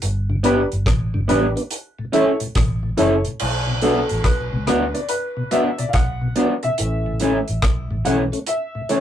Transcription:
0.02 fingered electric bass G1, closed hi-hat
0.29 tonewheel organ G2 D3
0.43 tonewheel organ G3 B3 D4, clean electric guitar B3 D4 G4, upright piano D4 G4 B4, closed hi-hat
0.72 fingered electric bass G1, closed hi-hat
0.86 fingered electric bass A1, kick, cross-stick, closed hi-hat
1.14 fingered electric bass G1, tonewheel organ G2 D3
1.28 fingered electric bass A1, tonewheel organ G3 B3 D4, clean electric guitar B3 D4 G4, upright piano D4 G4 B4, closed hi-hat
1.56 tonewheel organ B3 D4, closed hi-hat
1.71 closed hi-hat
1.99 tonewheel organ A2
2.12 tonewheel organ E3 A3 C#4, clean electric guitar C#4 E4 A4, upright piano E4 A4 C#5, closed hi-hat
2.40 tonewheel organ A2, closed hi-hat
2.55 fingered electric bass A1, kick, cross-stick, closed hi-hat
2.83 tonewheel organ A2
2.97 fingered electric bass F#1, tonewheel organ E3 A3 C#4, clean electric guitar C#4 E4 A4, upright piano E4 A4 C#5, closed hi-hat
3.25 tonewheel organ A2, closed hi-hat
3.40 fingered electric bass B1, crash
3.67 tonewheel organ B2
3.81 upright piano F#3 B3 D4 A4, tonewheel organ F#3 B3 D4, clean electric guitar B3 D4 F#4, closed hi-hat
4.09 fingered electric bass A1, closed hi-hat
4.24 upright piano B4, kick, cross-stick, closed hi-hat
4.52 fingered electric bass C#2, tonewheel organ B2
4.67 fingered electric bass D2, tonewheel organ F#3 B3 D4, clean electric guitar B3 D4 F#4, upright piano B4, cross-stick, closed hi-hat
4.94 tonewheel organ B3 D4, upright piano D5, closed hi-hat
5.09 upright piano B4, closed hi-hat
5.37 tonewheel organ B2
5.51 tonewheel organ F#3 B3 D4, clean electric guitar B3 D4 F#4, upright piano E5, closed hi-hat
5.78 tonewheel organ B2, upright piano D5, closed hi-hat
5.89 upright piano F5
5.93 fingered electric bass B1, upright piano F#5, kick, cross-stick, closed hi-hat
6.21 tonewheel organ B2
6.36 tonewheel organ F#3 B3 D4, clean electric guitar B3 D4 F#4, upright piano D5, closed hi-hat
6.63 tonewheel organ B2, upright piano E5, muted clean electric guitar stroke, closed hi-hat
6.78 fingered electric bass A1, upright piano E3 A3 C#4, closed hi-hat
7.06 tonewheel organ A2
7.20 clean electric guitar E3 A3 C#4, tonewheel organ E3 A3 C#4, closed hi-hat
7.48 fingered electric bass A1, closed hi-hat
7.62 fingered electric bass B1, kick, cross-stick, closed hi-hat
7.91 fingered electric bass A1, tonewheel organ A2
8.05 fingered electric bass B1, clean electric guitar E3 A3 C#4, tonewheel organ E3 A3 C#4, upright piano F#5, closed hi-hat
8.32 tonewheel organ A3 C#4, closed hi-hat
8.47 upright piano E5, closed hi-hat
8.75 tonewheel organ A2
8.89 clean electric guitar E3 A3 C#4, tonewheel organ E3 A3 C#4, upright piano C#5, closed hi-hat

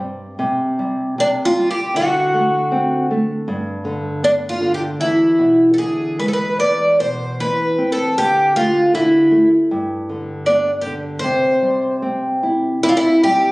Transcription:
Already playing: nylon-string guitar G2 G3
0.39 nylon-string guitar C3
0.79 nylon-string guitar G3
1.18 nylon-string guitar C3, twelve-string acoustic guitar D4
1.45 twelve-string acoustic guitar F4
1.57 nylon-string guitar G3
1.71 twelve-string acoustic guitar G4
1.94 nylon-string guitar D3, twelve-string acoustic guitar F#4
2.34 nylon-string guitar A3
2.72 nylon-string guitar C4
3.11 nylon-string guitar A3
3.48 nylon-string guitar G2
3.85 nylon-string guitar D3
4.23 nylon-string guitar B3, twelve-string acoustic guitar D4
4.49 twelve-string acoustic guitar F4
4.61 nylon-string guitar D3
4.74 twelve-string acoustic guitar G4
5.00 nylon-string guitar E2, twelve-string acoustic guitar E4
5.39 nylon-string guitar B2
5.74 twelve-string acoustic guitar A4
5.78 nylon-string guitar D3, twelve-string acoustic guitar G#4
6.19 nylon-string guitar G#3, twelve-string acoustic guitar B4
6.28 twelve-string acoustic guitar A4
6.33 twelve-string acoustic guitar B4
6.59 nylon-string guitar E2, twelve-string acoustic guitar D5
7.00 nylon-string guitar B2, twelve-string acoustic guitar C5
7.40 nylon-string guitar E3, twelve-string acoustic guitar B4
7.78 nylon-string guitar C4
7.92 twelve-string acoustic guitar A4
8.18 nylon-string guitar D3, twelve-string acoustic guitar G4
8.56 nylon-string guitar A3, twelve-string acoustic guitar F4
8.94 nylon-string guitar D3, twelve-string acoustic guitar E4
9.31 nylon-string guitar A3
9.71 nylon-string guitar G2
10.09 nylon-string guitar D3
10.46 nylon-string guitar B3, twelve-string acoustic guitar D4
10.81 twelve-string acoustic guitar G4
10.86 nylon-string guitar D3
11.19 twelve-string acoustic guitar C5
11.24 nylon-string guitar C3
11.62 nylon-string guitar G3
12.02 nylon-string guitar C4
12.43 nylon-string guitar E4
12.83 nylon-string guitar C3, twelve-string acoustic guitar E4
12.89 twelve-string acoustic guitar F4
12.97 twelve-string acoustic guitar E4
13.23 nylon-string guitar G3, twelve-string acoustic guitar G4

